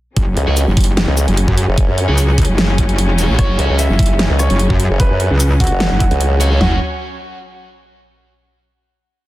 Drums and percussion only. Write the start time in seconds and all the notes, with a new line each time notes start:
0.17 kick, closed hi-hat
0.37 closed hi-hat
0.57 closed hi-hat, shaker
0.77 kick, closed hi-hat, open hi-hat
0.84 closed hi-hat
0.97 snare, closed hi-hat
1.17 closed hi-hat, shaker
1.28 closed hi-hat
1.37 closed hi-hat
1.48 kick
1.58 closed hi-hat
1.78 kick, closed hi-hat
1.98 closed hi-hat
2.18 closed hi-hat, shaker
2.38 kick, closed hi-hat, open hi-hat
2.45 closed hi-hat
2.58 snare, closed hi-hat
2.78 kick, closed hi-hat
2.89 closed hi-hat
2.98 closed hi-hat
3.19 closed hi-hat, shaker
3.39 kick, closed hi-hat
3.59 closed hi-hat
3.79 closed hi-hat, shaker
3.99 kick, closed hi-hat, open hi-hat
4.06 closed hi-hat
4.19 snare, closed hi-hat
4.39 closed hi-hat, shaker
4.50 closed hi-hat
4.59 closed hi-hat
4.70 kick
4.80 closed hi-hat
5.00 kick, closed hi-hat
5.20 closed hi-hat
5.40 closed hi-hat, shaker
5.60 kick, closed hi-hat, open hi-hat
5.67 closed hi-hat
5.80 snare, closed hi-hat
6.00 kick, closed hi-hat
6.11 closed hi-hat
6.21 closed hi-hat
6.41 closed hi-hat, shaker
6.61 snare, floor tom